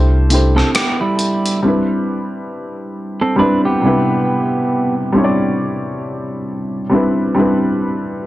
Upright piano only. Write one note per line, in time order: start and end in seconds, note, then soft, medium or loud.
0.00 0.26 A3 medium
0.00 0.27 D4 medium
0.00 0.27 E4 medium
0.00 0.28 G4 medium
0.00 0.29 C5 loud
0.29 1.55 A3 medium
0.29 1.55 D4 medium
0.29 1.56 E4 medium
0.29 1.56 G4 medium
0.34 1.57 C5 medium
1.62 3.29 G3 medium
1.62 3.30 C4 medium
1.62 3.30 D4 medium
1.66 3.31 E4 medium
1.66 3.32 B4 medium
3.36 3.79 G3 medium
3.36 3.80 C4 medium
3.36 3.80 D4 medium
3.36 3.81 E4 medium
3.41 3.82 B4 medium
3.82 5.08 C3 medium
3.82 5.07 G3 medium
3.82 5.09 D4 medium
3.82 5.09 E4 medium
3.87 5.10 B4 medium
5.12 6.81 G3 medium
5.12 6.81 C4 medium
5.12 6.82 D4 medium
5.12 6.82 E4 medium
5.18 5.24 C#5 medium
5.24 6.86 D5 medium
6.90 7.32 G3 medium
6.90 7.33 C4 medium
6.90 7.34 D4 medium
6.90 7.34 E4 medium
6.95 7.35 B4 medium
7.35 8.27 G3 medium
7.35 8.27 C4 medium
7.35 8.27 D4 medium
7.35 8.27 E4 medium
7.40 8.27 B4 medium